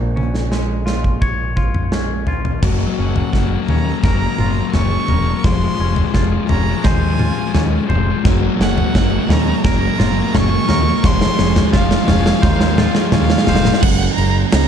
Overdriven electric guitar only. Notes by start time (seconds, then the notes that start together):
2.63 F#3 A#3
2.70 F#3 A#3
2.79 F#3 A#3
2.86 F#3 A#3
2.92 F#3 A#3
3.00 F#3 A#3
3.08 F#3 A#3
3.16 F#3 A#3
3.24 F#3 A#3
3.31 F#3 A#3
3.38 F#3 A#3
3.46 F#3 A#3
3.53 F#3 A#3
3.61 F#3 A#3
3.70 F#3 A#3
3.76 F#3 A#3
3.84 F#3 A#3
3.91 F#3 A#3
3.99 F#3 A#3
4.07 F#3 A#3
4.14 F#3 A#3
4.23 F#3 A#3
4.30 F#3 A#3
4.38 F#3 A#3
4.45 F#3 A#3
4.52 F#3 A#3
4.61 F#3 A#3
4.68 F#3 A#3
4.74 F#3 A#3
4.83 F#3 A#3
4.91 F#3 A#3
4.98 F#3 A#3
5.06 F#3 A#3
5.14 F#3 A#3
5.22 F#3 A#3
5.29 F#3 A#3
5.37 F#3 A#3
5.44 F3 G#3
5.51 F3 G#3
5.58 F3 G#3
5.68 F3 G#3
5.76 F3 G#3
5.82 F3 G#3
5.90 F3 G#3
5.98 F3 G#3
6.06 F3 G#3
6.15 F3 G#3
6.22 F3 G#3
6.30 F3 G#3
6.37 F3 G#3
6.46 F3 G#3
6.53 F3 G#3
6.61 F3 G#3
6.69 F3 G#3
6.77 F3 G#3
6.83 F3 G#3
6.92 F3 G#3
6.99 F3 G#3
7.08 F3 G#3
7.15 F3 G#3
7.23 F3 G#3
7.30 F3 G#3
7.38 F3 G#3
7.47 F3 G#3
7.54 F3 G#3
7.61 F3 G#3
7.71 F3 G#3
7.78 F3 G#3
7.86 F3 G#3
7.94 F3 G#3
8.01 F3 G#3
8.10 F3 G#3
8.16 F3 G#3
8.24 F#3 A#3
8.32 F#3 A#3
8.41 F#3 A#3
8.48 F#3 A#3
8.55 F#3 A#3
8.63 F#3 A#3
8.71 F#3 A#3
8.78 F#3 A#3
8.86 F#3 A#3
8.94 F#3 A#3
9.02 F#3 A#3
9.09 F#3 A#3
9.18 F#3 A#3
9.25 F#3 A#3
9.33 F#3 A#3
9.40 F#3 A#3
9.48 F#3 A#3
9.56 F#3 A#3
9.65 F#3 A#3
9.72 F#3 A#3
9.80 F#3 A#3
9.87 F#3 A#3
9.95 F#3 A#3
10.02 F#3 A#3
10.12 F#3 A#3
10.19 F#3 A#3
10.26 F#3 A#3
10.33 F#3 A#3
10.42 F#3 A#3
10.49 F#3 A#3
10.57 F#3 A#3
10.65 F#3 A#3
10.73 F#3 A#3
10.80 F#3 A#3
10.88 F#3 A#3
10.96 F#3 A#3
11.04 F3 G#3
11.12 F3 G#3
11.19 F3 G#3
11.27 F3 G#3
11.34 F3 G#3
11.43 F3 G#3
11.50 F3 G#3
11.58 F3 G#3
11.66 F3 G#3
11.73 F3 G#3
11.80 F3 G#3
11.89 F3 G#3
11.97 F3 G#3
12.05 F3 G#3
12.11 F3 G#3
12.20 F3 G#3
12.26 F3 G#3
12.35 F3 G#3
12.43 F3 G#3
12.50 F3 G#3
12.58 F3 G#3
12.66 F3 G#3
12.74 F3 G#3
12.81 F3 G#3
12.89 F3 G#3
12.96 F3 G#3
13.05 F3 G#3
13.13 F3 G#3
13.20 F3 G#3
13.28 F3 G#3
13.36 F3 G#3
13.44 F3 G#3
13.52 F3 G#3
13.60 F3 G#3
13.67 F3 G#3
13.75 F3 G#3